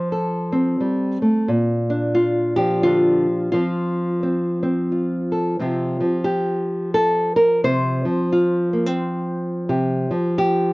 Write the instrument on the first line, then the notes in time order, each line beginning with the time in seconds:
nylon-string guitar
Already playing: F3 C4 F4 C5
0.12 A4
0.52 C4
0.80 G3
1.22 A3
1.48 A#2
1.90 D4
2.15 F4
2.56 F3 G4
2.83 D3 F4
3.52 F3 C4 F4
4.23 C4
4.63 C4
4.92 F4
5.32 A4
5.59 C3 F3 C4 F4 G4
6.00 F3
6.24 G4
6.94 A4
7.36 A#4
7.64 C3 C5
8.05 F3
8.32 F4
8.73 A#3
8.86 C4
9.69 C3 G4
10.11 F3
10.38 G4